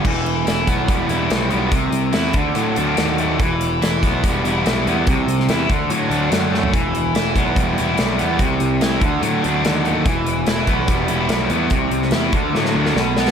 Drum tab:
CC |x---------------|----------------|----------------|----------------|
HH |--x-x-x-x-x-x-x-|x-x-x-x-x-x-x-x-|x-x-x-x-x-x-x-x-|x-x-x-x-x-x-x---|
SD |----o-------o---|----oo------o---|----o-------o---|---oo-------o-o-|
FT |----------------|----------------|----------------|---------------o|
BD |o-----o-o-------|o-----o---------|o-----o-o-------|o-----o---------|

CC |----------------|----------------|----------------|----------------|
HH |x-x-x-x-x-x-x-x-|x-x-x-x-x-x-x-x-|x-x-x-x-x-x-x-x-|x-x-x-x---------|
SD |----o-------o---|----o-------o---|----o-------o---|---oo---oo-oo-oo|
FT |----------------|----------------|----------------|----------------|
BD |o-----o-o-------|o-----o---------|o-----o-o-------|o-----o---------|